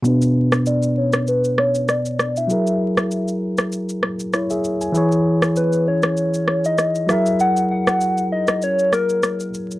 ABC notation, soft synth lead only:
X:1
M:4/4
L:1/16
Q:"Swing 16ths" 1/4=98
K:F#mix
V:1 name="Soft synth lead"
z4 =d2 c2 B2 c2 d3 e- | e4- e z8 z3 | z4 B2 c4- c d3 e2 | f2 f4 d2 c2 A4 z2 |]